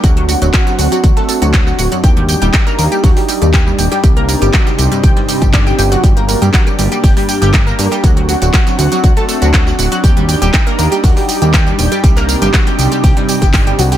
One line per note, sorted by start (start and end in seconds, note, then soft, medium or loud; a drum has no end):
0.00 0.35 D2 loud
0.00 0.11 F#3 medium
0.00 2.02 C4 medium
0.00 2.00 D4 medium
0.00 0.11 F#4 medium
0.00 2.02 F#4 medium
0.00 kick loud
0.00 closed hi-hat medium
0.04 tambourine soft
0.17 0.21 F#3 medium
0.17 0.21 F#4 medium
0.17 closed hi-hat soft
0.29 0.32 F#3 medium
0.29 0.32 F#4 medium
0.29 closed hi-hat medium
0.29 open hi-hat loud
0.29 tambourine medium
0.42 0.50 D1 medium
0.42 0.44 F#2 medium
0.42 0.44 F#3 medium
0.42 closed hi-hat soft
0.42 closed hi-hat medium
0.42 tambourine soft
0.54 0.59 F#4 loud
0.54 0.59 F#5 medium
0.54 kick loud
0.54 snare loud
0.54 clap loud
0.54 closed hi-hat medium
0.54 tambourine soft
0.67 0.73 F#2 loud
0.67 0.73 F#3 medium
0.67 snare medium
0.67 closed hi-hat soft
0.67 tambourine soft
0.79 0.88 D2 loud
0.79 0.84 F#4 medium
0.79 0.84 F#5 medium
0.79 closed hi-hat medium
0.79 open hi-hat loud
0.79 tambourine medium
0.92 0.98 F#3 loud
0.92 0.98 F#4 medium
0.92 closed hi-hat soft
0.92 tambourine soft
1.04 1.13 D2 medium
1.04 1.07 F#3 medium
1.04 1.07 F#4 medium
1.04 kick loud
1.04 closed hi-hat medium
1.04 tambourine soft
1.17 1.23 A3 loud
1.17 1.23 A4 medium
1.17 snare soft
1.17 closed hi-hat soft
1.29 1.36 A3 medium
1.29 1.36 A4 medium
1.29 closed hi-hat medium
1.29 open hi-hat loud
1.29 tambourine medium
1.42 1.73 D2 medium
1.42 1.46 F#3 medium
1.42 1.46 F#4 medium
1.42 closed hi-hat medium
1.42 tambourine soft
1.54 1.61 F#3 medium
1.54 1.61 F#4 medium
1.54 kick loud
1.54 snare loud
1.54 clap loud
1.54 closed hi-hat loud
1.54 closed hi-hat medium
1.54 tambourine soft
1.67 1.71 F#3 medium
1.67 1.71 F#4 medium
1.67 snare medium
1.67 tambourine soft
1.79 1.88 D1 loud
1.79 1.82 F#3 medium
1.79 1.82 F#4 medium
1.79 closed hi-hat medium
1.79 open hi-hat loud
1.79 tambourine medium
1.92 1.94 F#2 medium
1.92 1.94 F#3 medium
1.92 closed hi-hat medium
1.92 closed hi-hat soft
1.92 tambourine soft
2.04 2.35 D#2 loud
2.04 6.00 D4 medium
2.04 4.02 D#4 medium
2.04 8.00 G4 medium
2.04 2.09 G4 loud
2.04 2.09 G5 medium
2.04 kick loud
2.04 closed hi-hat medium
2.04 tambourine soft
2.17 2.23 G2 loud
2.17 2.23 G3 medium
2.17 closed hi-hat soft
2.29 2.34 G4 medium
2.29 2.34 G5 medium
2.29 closed hi-hat medium
2.29 open hi-hat loud
2.29 tambourine medium
2.42 2.50 D#1 medium
2.42 2.48 G3 loud
2.42 2.48 G4 medium
2.42 closed hi-hat medium
2.42 tambourine soft
2.54 2.57 G3 medium
2.54 2.57 G4 medium
2.54 kick loud
2.54 snare loud
2.54 clap loud
2.54 closed hi-hat medium
2.54 tambourine soft
2.67 2.73 A#3 loud
2.67 2.73 A#4 medium
2.67 closed hi-hat soft
2.67 tambourine soft
2.79 2.88 D#2 loud
2.79 2.86 A#3 medium
2.79 2.86 A#4 medium
2.79 closed hi-hat medium
2.79 open hi-hat loud
2.79 tambourine medium
2.92 2.96 G3 medium
2.92 2.96 G4 medium
2.92 closed hi-hat medium
2.92 tambourine soft
3.04 3.13 D#2 medium
3.04 3.11 F#3 medium
3.04 3.11 F#4 medium
3.04 kick loud
3.04 closed hi-hat medium
3.04 open hi-hat medium
3.04 tambourine soft
3.17 3.21 G3 medium
3.17 3.21 G4 medium
3.17 snare medium
3.17 open hi-hat medium
3.29 3.32 G3 medium
3.29 3.32 G4 medium
3.29 closed hi-hat medium
3.29 open hi-hat loud
3.29 tambourine medium
3.42 3.73 D#2 medium
3.42 3.44 G2 medium
3.42 3.44 G3 medium
3.42 closed hi-hat medium
3.42 tambourine soft
3.53 3.58 G4 loud
3.53 3.58 G5 medium
3.53 kick loud
3.53 snare loud
3.53 clap loud
3.53 closed hi-hat medium
3.53 tambourine soft
3.67 3.73 G2 loud
3.67 3.73 G3 medium
3.67 tambourine soft
3.79 3.88 D#1 loud
3.79 3.83 G4 medium
3.79 3.83 G5 medium
3.79 closed hi-hat medium
3.79 open hi-hat loud
3.79 tambourine medium
3.92 3.98 G3 loud
3.92 3.98 G4 medium
3.92 snare medium
3.92 closed hi-hat medium
3.92 tambourine soft
4.03 4.35 C2 loud
4.03 6.02 C3 medium
4.03 4.07 G3 medium
4.03 6.02 C4 medium
4.03 6.02 D#4 medium
4.03 4.07 G4 medium
4.03 kick loud
4.03 closed hi-hat medium
4.03 tambourine soft
4.17 4.23 A#3 loud
4.17 4.23 A#4 medium
4.17 closed hi-hat soft
4.28 4.36 A#3 medium
4.28 4.36 A#4 medium
4.28 closed hi-hat medium
4.28 open hi-hat loud
4.28 tambourine medium
4.42 4.50 G1 medium
4.42 4.46 G3 medium
4.42 4.46 G4 medium
4.42 closed hi-hat soft
4.42 tambourine soft
4.53 4.61 F#3 medium
4.53 4.61 F#4 medium
4.53 kick loud
4.53 snare loud
4.53 clap loud
4.53 closed hi-hat medium
4.53 tambourine soft
4.67 4.71 G3 medium
4.67 4.71 G4 medium
4.67 snare medium
4.67 closed hi-hat soft
4.67 tambourine soft
4.78 4.88 C2 medium
4.78 4.81 G3 medium
4.78 4.81 G4 medium
4.78 closed hi-hat medium
4.78 open hi-hat loud
4.78 tambourine medium
4.91 4.94 G2 medium
4.91 4.94 G3 medium
4.91 closed hi-hat soft
4.91 tambourine soft
5.03 5.13 C2 medium
5.03 5.08 G4 loud
5.03 5.08 G5 medium
5.03 kick loud
5.03 closed hi-hat medium
5.03 tambourine soft
5.17 5.23 G2 loud
5.17 5.23 G3 medium
5.17 snare soft
5.17 closed hi-hat soft
5.29 5.33 G3 medium
5.29 5.33 G4 medium
5.29 closed hi-hat medium
5.29 open hi-hat loud
5.29 tambourine medium
5.42 5.73 G1 medium
5.42 5.46 G3 medium
5.42 5.46 G4 medium
5.42 kick medium
5.42 closed hi-hat medium
5.42 tambourine soft
5.54 5.57 D4 medium
5.54 5.57 D5 medium
5.54 kick loud
5.54 snare loud
5.54 clap loud
5.54 closed hi-hat medium
5.54 tambourine soft
5.67 5.73 G4 medium
5.67 5.73 G5 medium
5.67 snare medium
5.67 tambourine soft
5.79 5.96 G1 loud
5.79 5.84 G3 medium
5.79 5.83 G4 medium
5.79 closed hi-hat medium
5.79 open hi-hat loud
5.79 tambourine medium
5.92 5.96 F#3 loud
5.92 5.96 F#4 medium
5.92 closed hi-hat soft
5.92 closed hi-hat medium
5.92 tambourine soft
6.04 6.35 G1 loud
6.04 6.07 G3 medium
6.04 8.02 A#3 medium
6.04 8.02 D4 medium
6.04 6.07 G4 medium
6.04 kick loud
6.04 closed hi-hat medium
6.04 tambourine soft
6.17 6.23 A#3 loud
6.17 6.23 A#4 medium
6.17 closed hi-hat soft
6.29 6.36 A#3 medium
6.29 6.36 A#4 medium
6.29 closed hi-hat medium
6.29 open hi-hat loud
6.29 tambourine medium
6.42 6.50 G2 medium
6.42 6.46 G3 medium
6.42 6.46 G4 medium
6.42 closed hi-hat medium
6.42 tambourine soft
6.54 6.61 F#3 medium
6.54 6.61 F#4 medium
6.54 kick loud
6.54 snare loud
6.54 clap loud
6.54 closed hi-hat medium
6.54 tambourine soft
6.67 6.71 G3 medium
6.67 6.71 G4 medium
6.67 closed hi-hat soft
6.67 tambourine soft
6.79 6.88 G1 loud
6.79 6.82 G3 medium
6.79 6.82 G4 medium
6.79 closed hi-hat medium
6.79 open hi-hat loud
6.79 tambourine medium
6.92 6.96 G3 medium
6.92 6.96 G4 medium
6.92 closed hi-hat medium
6.92 tambourine soft
7.04 7.13 G1 medium
7.04 7.09 G4 loud
7.04 7.09 G5 medium
7.04 kick loud
7.04 closed hi-hat medium
7.04 open hi-hat medium
7.04 tambourine soft
7.17 7.23 G2 loud
7.17 7.23 G3 medium
7.17 snare medium
7.17 open hi-hat medium
7.29 7.34 G4 medium
7.29 7.34 G5 medium
7.29 closed hi-hat medium
7.29 open hi-hat loud
7.29 tambourine medium
7.42 7.73 G1 medium
7.42 7.48 G3 loud
7.42 7.48 G4 medium
7.42 closed hi-hat medium
7.42 tambourine soft
7.54 7.57 G3 medium
7.54 7.57 G4 medium
7.54 kick loud
7.54 snare loud
7.54 clap loud
7.54 closed hi-hat loud
7.54 closed hi-hat medium
7.54 tambourine soft
7.67 7.73 A#3 loud
7.67 7.73 A#4 medium
7.67 tambourine soft
7.79 7.88 G2 loud
7.79 7.86 A#3 medium
7.79 7.86 A#4 medium
7.79 closed hi-hat medium
7.79 open hi-hat loud
7.79 tambourine medium
7.92 7.96 G3 medium
7.92 7.96 G4 medium
7.92 snare medium
7.92 closed hi-hat medium
7.92 tambourine soft
8.04 8.35 D2 loud
8.04 8.11 F#3 medium
8.04 10.02 C4 medium
8.04 13.98 D4 medium
8.04 8.11 F#4 medium
8.04 10.02 F#4 medium
8.04 kick loud
8.04 closed hi-hat medium
8.04 tambourine soft
8.17 8.21 F#3 medium
8.17 8.21 F#4 medium
8.17 closed hi-hat soft
8.29 8.32 F#3 medium
8.29 8.32 F#4 medium
8.29 closed hi-hat medium
8.29 open hi-hat loud
8.29 tambourine medium
8.42 8.50 D1 medium
8.42 8.46 F#3 medium
8.42 8.46 F#4 medium
8.42 closed hi-hat medium
8.42 closed hi-hat soft
8.42 tambourine soft
8.54 8.59 F#4 loud
8.54 8.58 F#5 medium
8.54 kick loud
8.54 snare loud
8.54 clap loud
8.54 closed hi-hat medium
8.54 closed hi-hat loud
8.54 tambourine soft
8.67 8.73 F#2 medium
8.67 8.73 F#3 medium
8.67 snare medium
8.67 closed hi-hat soft
8.67 tambourine soft
8.79 8.88 D2 loud
8.79 8.83 F#4 medium
8.79 8.83 F#5 medium
8.79 closed hi-hat medium
8.79 open hi-hat loud
8.79 tambourine medium
8.92 8.98 F#3 loud
8.92 8.98 F#4 medium
8.92 closed hi-hat medium
8.92 tambourine soft
9.04 9.13 D2 medium
9.04 9.07 F#3 medium
9.04 9.07 F#4 medium
9.04 kick loud
9.04 closed hi-hat medium
9.04 tambourine soft
9.17 9.23 A3 loud
9.17 9.23 A4 medium
9.17 snare soft
9.17 closed hi-hat soft
9.29 9.36 A3 medium
9.29 9.36 A4 medium
9.29 closed hi-hat medium
9.29 open hi-hat loud
9.29 tambourine medium
9.42 9.73 D2 medium
9.42 9.46 F#3 medium
9.42 9.46 F#4 medium
9.42 closed hi-hat medium
9.42 tambourine soft
9.54 9.61 F#3 medium
9.54 9.61 F#4 medium
9.54 kick loud
9.54 snare loud
9.54 clap loud
9.54 closed hi-hat medium
9.54 tambourine soft
9.67 9.71 F#3 medium
9.67 9.71 F#4 medium
9.67 snare medium
9.67 tambourine soft
9.79 9.88 D1 loud
9.79 9.82 F#3 medium
9.79 9.82 F#4 medium
9.79 closed hi-hat medium
9.79 open hi-hat loud
9.79 tambourine medium
9.92 9.96 F#3 medium
9.92 9.96 F#4 medium
9.92 closed hi-hat soft
9.92 closed hi-hat medium
9.92 tambourine soft
10.04 10.35 D#2 loud
10.04 12.02 D#4 medium
10.04 10.08 G4 loud
10.04 13.98 G4 medium
10.04 10.09 G5 medium
10.04 kick loud
10.04 closed hi-hat medium
10.04 tambourine medium
10.17 10.23 G2 loud
10.17 10.23 G3 medium
10.17 closed hi-hat soft
10.29 10.33 G4 medium
10.29 10.33 G5 soft
10.29 closed hi-hat medium
10.29 open hi-hat loud
10.29 tambourine medium
10.42 10.50 D#1 medium
10.42 10.48 G3 loud
10.42 10.48 G4 medium
10.42 closed hi-hat medium
10.42 tambourine soft
10.54 10.57 G3 medium
10.54 10.57 G4 medium
10.54 kick loud
10.54 snare loud
10.54 clap loud
10.54 closed hi-hat medium
10.54 tambourine soft
10.67 10.73 A#3 medium
10.67 10.73 A#4 medium
10.67 closed hi-hat soft
10.67 tambourine soft
10.78 10.88 D#2 loud
10.78 10.86 A#3 medium
10.78 10.86 A#4 medium
10.78 closed hi-hat medium
10.78 open hi-hat loud
10.78 tambourine medium
10.92 10.96 G3 medium
10.92 10.96 G4 medium
10.92 closed hi-hat medium
10.92 tambourine soft
11.03 11.13 D#2 medium
11.03 11.11 F#3 medium
11.03 11.11 F#4 medium
11.03 kick loud
11.03 closed hi-hat medium
11.03 open hi-hat medium
11.03 tambourine soft
11.17 11.21 G3 medium
11.17 11.21 G4 medium
11.17 snare medium
11.17 open hi-hat medium
11.29 11.32 G3 medium
11.29 11.32 G4 medium
11.29 closed hi-hat medium
11.29 open hi-hat loud
11.29 tambourine medium
11.42 11.73 D#2 medium
11.42 11.46 G3 medium
11.42 11.46 G4 medium
11.42 closed hi-hat medium
11.42 tambourine soft
11.54 11.59 G4 loud
11.54 11.59 G5 medium
11.54 kick loud
11.54 snare loud
11.54 clap loud
11.54 closed hi-hat loud
11.54 closed hi-hat medium
11.54 tambourine soft
11.67 11.73 G2 loud
11.67 11.73 G3 medium
11.67 tambourine soft
11.79 11.88 D#1 loud
11.79 11.84 G4 medium
11.79 11.84 G5 medium
11.79 closed hi-hat medium
11.79 open hi-hat loud
11.79 tambourine medium
11.92 11.98 G3 loud
11.92 11.98 G4 medium
11.92 snare soft
11.92 closed hi-hat medium
11.92 tambourine soft
12.04 12.35 C2 loud
12.04 13.98 C3 medium
12.04 12.07 G3 medium
12.04 13.98 C4 medium
12.04 13.98 D#4 medium
12.04 12.07 G4 medium
12.04 kick loud
12.04 closed hi-hat medium
12.04 closed hi-hat loud
12.04 tambourine medium
12.17 12.23 A#3 loud
12.17 12.23 A#4 medium
12.17 clap soft
12.17 closed hi-hat soft
12.17 tambourine soft
12.29 12.36 A#3 medium
12.29 12.36 A#4 medium
12.29 closed hi-hat medium
12.29 open hi-hat loud
12.29 tambourine medium
12.42 12.50 G1 medium
12.42 12.46 G3 medium
12.42 12.46 G4 medium
12.42 closed hi-hat medium
12.42 closed hi-hat soft
12.42 tambourine soft
12.54 12.61 F#3 medium
12.54 12.61 F#4 medium
12.54 kick loud
12.54 snare loud
12.54 clap loud
12.54 closed hi-hat medium
12.54 tambourine soft
12.67 12.71 G3 medium
12.67 12.71 G4 medium
12.67 snare medium
12.67 closed hi-hat soft
12.67 tambourine soft
12.79 12.88 C2 loud
12.79 12.82 G3 medium
12.79 12.82 G4 medium
12.79 open hi-hat loud
12.79 tambourine medium
12.92 12.96 G3 medium
12.92 12.96 G4 medium
12.92 closed hi-hat medium
12.92 tambourine soft
13.04 13.13 C2 medium
13.04 13.09 G4 loud
13.04 13.09 G5 medium
13.04 kick loud
13.04 closed hi-hat medium
13.04 open hi-hat medium
13.04 tambourine soft
13.17 13.23 G2 loud
13.17 13.23 G3 medium
13.17 snare soft
13.17 closed hi-hat soft
13.29 13.34 G4 medium
13.29 13.34 G5 medium
13.29 open hi-hat loud
13.29 open hi-hat medium
13.29 tambourine medium
13.42 13.73 G1 medium
13.42 13.46 G3 medium
13.42 13.46 G4 medium
13.42 kick medium
13.42 snare soft
13.42 closed hi-hat medium
13.42 tambourine soft
13.54 13.59 G4 medium
13.54 13.59 G5 medium
13.54 kick loud
13.54 clap loud
13.54 closed hi-hat medium
13.54 open hi-hat medium
13.54 tambourine soft
13.67 13.69 G3 medium
13.67 13.70 G4 medium
13.67 closed hi-hat soft
13.67 tambourine soft
13.79 13.96 C2 medium
13.79 13.82 F#3 medium
13.79 13.82 F#4 medium
13.79 closed hi-hat medium
13.79 open hi-hat loud
13.79 tambourine medium
13.92 13.96 G3 loud
13.92 13.96 G4 medium
13.92 closed hi-hat medium
13.92 closed hi-hat soft
13.92 tambourine soft